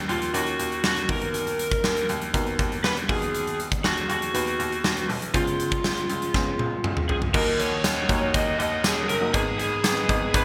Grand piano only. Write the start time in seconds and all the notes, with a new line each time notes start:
0.09 D#2
0.34 D#2
0.59 D#2
0.84 D#2
1.09 D#2
1.84 D#2
2.09 D#2
2.34 D#2
2.59 D#2
2.84 D#2
3.09 D#2
3.84 D#2
4.09 D#2
4.34 D#2
4.59 D#2
4.84 D#2
5.09 B1
5.34 C#2
5.84 C#2
6.09 C#2
6.34 C#2
6.59 C#2
6.84 C#2
7.09 C#2
7.34 D#2
7.84 D#2
8.09 D#2
8.34 D#2
8.59 D#2
8.84 D#2
9.09 F#1
9.34 G#1
9.84 G#1
10.09 G#1
10.34 G#1